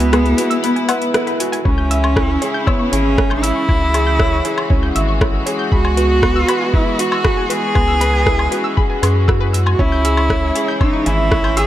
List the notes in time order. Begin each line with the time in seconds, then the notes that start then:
Already playing: C#2 E3 G#3 B3 E4 F#4 G#4 B4
0.00 closed hi-hat
0.13 G#4 B4, cross-stick, closed hi-hat, low woodblock
0.26 closed hi-hat
0.38 F#4 B4, closed hi-hat
0.50 E6, closed hi-hat
0.63 B3 B5, closed hi-hat
0.76 G#5, closed hi-hat
0.88 B4 F#5, closed hi-hat, low woodblock
1.02 closed hi-hat
1.14 E4 B4, cross-stick, closed hi-hat
1.27 B5, closed hi-hat
1.40 F#4 G#5, closed hi-hat
1.52 G#5, closed hi-hat
1.65 C#2 C#3 E3 G#3 C#4 E4 C#5, kick
1.78 G6
1.91 E5 E6, closed hi-hat
2.03 C#6, low woodblock
2.16 E4 C#5, kick, cross-stick
2.42 G#4 C#5, closed hi-hat
2.54 G6
2.67 B3 C#5 E6, kick, low woodblock
2.79 C#6
2.92 G#1 C#4 G#4 C#5, closed hi-hat
3.18 C#4 C#5, kick, cross-stick
3.30 G6, low woodblock
3.43 E4 E5 E6, closed hi-hat
3.56 C#6
3.68 C#2 E4 F#4 C#5, kick
3.94 G#4 C#5, closed hi-hat, low woodblock
4.07 G6
4.19 C#5 E6, kick, cross-stick
4.32 C#6
4.45 G#4 C#5, closed hi-hat
4.58 low woodblock
4.70 C#2 C#4 C#5, kick
4.83 G6
4.95 G#1 E5 E6, closed hi-hat
5.08 C#6
5.21 E4 C#5, kick, cross-stick, low woodblock
5.46 G#4 C#5, closed hi-hat
5.59 G6
5.72 C#2 B3 F#4 G#4 B5, kick
5.85 G#5, low woodblock
5.97 F#4 B4, closed hi-hat
6.22 B3 B4, kick, cross-stick
6.36 E6
6.48 B4 B5, closed hi-hat, low woodblock
6.61 G#5
6.74 E4 B4, kick
6.99 F#4 B4, closed hi-hat
7.12 E6, low woodblock
7.24 G#4 B5, kick, cross-stick
7.37 G#5
7.50 F#4 G#4 B4, closed hi-hat
7.75 C#2 B3 C#4 B4, kick, low woodblock
7.88 E6
8.01 B4 B5, closed hi-hat
8.13 G#5
8.26 E4 B4, kick, cross-stick
8.39 low woodblock
8.52 F#4 B4, closed hi-hat
8.64 E6
8.77 G#4 B5, kick
8.90 G#5
9.02 F#2 G#4 B4, closed hi-hat, low woodblock
9.28 F#4 E6, kick, cross-stick
9.41 B4
9.53 E6, closed hi-hat
9.66 G#5, low woodblock
9.73 F#4
9.79 C#2 C#3 E3 C#4 E4 C#5, kick
9.92 G6
10.05 G#4 E6, closed hi-hat
10.17 C#6, low woodblock
10.30 C#5 G#5, kick, cross-stick
10.55 G#4 C#5, closed hi-hat
10.68 G6
10.80 C#4 D#4 E6, kick, low woodblock
10.93 C#6
11.06 G#1 E4 E5 G#5, closed hi-hat
11.31 C#4 C#5, kick, cross-stick
11.44 G6, low woodblock
11.57 G#4 E6, closed hi-hat